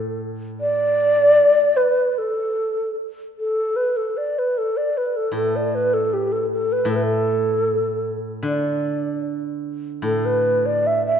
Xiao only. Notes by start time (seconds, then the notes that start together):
Already playing: A4
0.61 D5
1.77 B4
2.18 A4
3.39 A4
3.76 B4
3.97 A4
4.17 D5
4.39 B4
4.58 A4
4.77 D5
4.97 B4
5.16 A4
5.35 A4
5.56 D5
5.75 B4
5.94 A4
6.13 G4
6.32 A4
6.52 A4
6.72 B4
6.90 A4
6.96 B4
7.03 A4
8.47 D5
10.04 A4
10.26 B4
10.66 D5
10.87 E5
11.06 E5